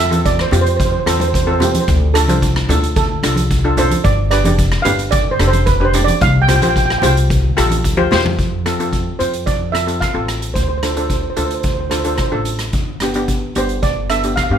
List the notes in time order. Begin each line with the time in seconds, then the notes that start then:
Already playing: F2 E5
0.11 E2 C4 F4 A4, closed hi-hat, high conga
0.26 D5, kick, closed hi-hat
0.39 C5, cross-stick
0.51 F2 C4 F4 G4, closed hi-hat, low conga
0.61 C5
0.66 C5, closed hi-hat
0.76 C5, kick, closed hi-hat
0.85 C5
0.92 C5
1.00 C5
1.06 E2 C4 F4 A4 C5, cross-stick, closed hi-hat
1.13 C5
1.20 C5, closed hi-hat, high conga
1.28 C5
1.34 C5, kick, closed hi-hat
1.43 C5
1.47 C4 F4 A4
1.52 C5
1.59 C4 F4 G4 C5, closed hi-hat, low conga
1.64 C5
1.72 C5, closed hi-hat, high conga
1.80 C5
1.88 D2, kick, closed hi-hat
2.14 D4 F4 A4, cross-stick, closed hi-hat
2.28 C2 D4 F4 C5, closed hi-hat, high conga
2.42 kick, closed hi-hat
2.56 cross-stick
2.69 D2 D4 F4 A4, closed hi-hat, low conga
2.83 closed hi-hat
2.96 A4, kick, closed hi-hat
3.23 C2 D4 F4 A4, cross-stick, closed hi-hat
3.36 closed hi-hat, high conga
3.51 kick, closed hi-hat
3.64 D4 F4 A4
3.77 D4 F4 A4 C5, closed hi-hat, low conga
3.91 closed hi-hat, high conga
4.04 G1 D5, kick, closed hi-hat
4.31 D4 G4 B4 D5, cross-stick, closed hi-hat
4.45 F1 D4 G4 D5, closed hi-hat, high conga
4.58 kick, closed hi-hat
4.72 cross-stick
4.82 G1 D4 G4 B4 F5, closed hi-hat
4.86 low conga
4.99 closed hi-hat
5.11 D5, kick, closed hi-hat
5.31 C5
5.39 F1 D4 G4 A4, cross-stick, closed hi-hat
5.48 C5
5.53 closed hi-hat, high conga
5.66 B4, kick, closed hi-hat
5.80 D4 G4 B4
5.85 C5
5.93 D4 G4 D5, closed hi-hat, low conga
6.04 D5, closed hi-hat, high conga
6.21 C2 F5, kick, closed hi-hat, low conga
6.42 G5
6.48 F4 G4 C5 G5, cross-stick, closed hi-hat, low conga
6.56 G5
6.62 A#1 F4 G4 C5 G5, closed hi-hat, high conga
6.68 G5
6.76 G5, kick, closed hi-hat
6.86 G5
6.90 G5, cross-stick
6.99 G5, high conga, low conga
7.03 C2 F4 G4 C5 G5, closed hi-hat
7.17 closed hi-hat
7.30 kick, closed hi-hat
7.57 A#1 F4 G4 A4, cross-stick, closed hi-hat
7.70 closed hi-hat, high conga
7.84 kick, closed hi-hat
7.97 F4 G4 C5, high conga
8.11 E2 F4 G4 C5, snare, low conga
8.25 floor tom, high conga
8.38 F2, kick, closed hi-hat
8.66 C4 F4 A4, cross-stick, closed hi-hat
8.79 C4 F4 A4, closed hi-hat
8.93 kick, closed hi-hat
9.19 F2 C4 F4 C5, closed hi-hat
9.33 closed hi-hat
9.46 D5, kick, closed hi-hat
9.72 C4 F4 A4 E5, cross-stick, closed hi-hat
9.87 C4 F4 A4, closed hi-hat
10.00 F5, kick, cross-stick, closed hi-hat
10.14 A1 C4 F4 A4
10.28 cross-stick, closed hi-hat
10.42 closed hi-hat
10.54 D2 C5, kick, closed hi-hat
10.63 C5
10.69 C5
10.78 C5
10.83 D4 F4 A4 C5, cross-stick, closed hi-hat
10.92 C5
10.97 D4 F4 A4 C5, closed hi-hat
11.08 C5, kick, closed hi-hat
11.13 C5
11.22 C5
11.30 C5
11.37 D2 D4 F4 A4 C5, closed hi-hat
11.45 C5
11.51 C5, closed hi-hat
11.60 C5, kick, closed hi-hat
11.68 C5
11.74 C5
11.81 C5
11.90 D4 F4 A4 C5, cross-stick, closed hi-hat
12.00 C5
12.04 D4 F4 A4 C5, closed hi-hat
12.16 C5, kick, cross-stick, closed hi-hat
12.21 C5
12.28 D4 F4 A4 C5
12.32 A1
12.45 closed hi-hat
12.59 cross-stick, closed hi-hat
12.73 G1, kick, closed hi-hat
13.00 B3 D4 G4, cross-stick, closed hi-hat
13.14 B3 D4 G4, closed hi-hat
13.28 kick, closed hi-hat
13.55 G1 B3 D4 G4 C5, closed hi-hat
13.69 closed hi-hat
13.83 D5, kick, closed hi-hat
14.10 B3 D4 A4 E5, cross-stick, closed hi-hat
14.23 B3 D4 G4, closed hi-hat
14.36 F5, kick, cross-stick, closed hi-hat
14.44 F5
14.50 G2 B3 D4 G4 F5